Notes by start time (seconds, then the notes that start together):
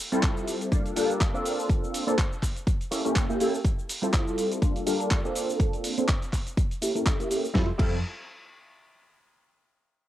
0.12 G3 C4 E4 F4 A4, closed hi-hat, cabasa
0.23 kick, clap, closed hi-hat, cabasa
0.37 cabasa
0.48 open hi-hat, cabasa
0.61 closed hi-hat, cabasa
0.72 G3 A#3 D4 F4 A4, kick, closed hi-hat, cabasa
0.86 closed hi-hat, cabasa
0.96 G3 A#3 D4 F4 A4, open hi-hat, cabasa
1.10 closed hi-hat, cabasa
1.21 kick, clap, closed hi-hat, cabasa
1.33 A#3 C4 D4 F4 A4, cabasa
1.45 open hi-hat, cabasa
1.59 cabasa
1.69 kick, closed hi-hat, cabasa
1.84 cabasa
1.94 open hi-hat, cabasa
2.07 A#3 C4 D4 F4 A4, closed hi-hat, cabasa
2.18 kick, clap, closed hi-hat, cabasa
2.32 cabasa
2.43 kick, clap, open hi-hat, cabasa
2.56 closed hi-hat, cabasa
2.67 kick, closed hi-hat, cabasa
2.81 closed hi-hat, cabasa
2.91 A#3 C#4 E4 G4 A4, open hi-hat, cabasa
3.05 A#3 C#4 E4 G4 A4, closed hi-hat, cabasa
3.16 kick, clap, closed hi-hat, cabasa
3.29 A#3 C#4 E4 G4 A#4, cabasa
3.40 A#3 C#4 E4 G4 A4, open hi-hat, cabasa
3.54 cabasa
3.65 kick, closed hi-hat, cabasa
3.79 cabasa
3.89 open hi-hat, cabasa
4.02 G3 C4 E4 F4 A4, closed hi-hat, cabasa
4.13 kick, clap, closed hi-hat, cabasa
4.28 cabasa
4.38 open hi-hat, cabasa
4.52 closed hi-hat, cabasa
4.62 G3 A#3 D4 F4 A4, kick, closed hi-hat, cabasa
4.76 closed hi-hat, cabasa
4.86 G3 A#3 D4 F4 A4, open hi-hat, cabasa
5.00 closed hi-hat, cabasa
5.11 kick, clap, closed hi-hat, cabasa
5.24 A#3 C4 D4 F4 A4, cabasa
5.35 open hi-hat, cabasa
5.49 cabasa
5.60 kick, closed hi-hat, cabasa
5.73 closed hi-hat, cabasa
5.84 open hi-hat, cabasa
5.97 A#3 C4 D4 F4 A4, closed hi-hat, cabasa
6.08 kick, clap, closed hi-hat, cabasa
6.22 closed hi-hat, cabasa
6.33 kick, clap, open hi-hat, cabasa
6.47 closed hi-hat, cabasa
6.57 kick, closed hi-hat, cabasa
6.71 closed hi-hat, cabasa
6.81 A#3 C#4 E4 G4 A4, open hi-hat, cabasa
6.95 A#3 C#4 E4 G4 A4, closed hi-hat, cabasa
7.06 kick, clap, closed hi-hat, cabasa
7.19 A#3 C#4 E4 G4 A#4, closed hi-hat, cabasa
7.30 A#3 C#4 E4 G4 A4, open hi-hat, cabasa
7.45 cabasa
7.54 F2 G3 C4 E4 F4 A4, kick, snare
7.78 F2 G3 C4 E4 F4 A4, kick, crash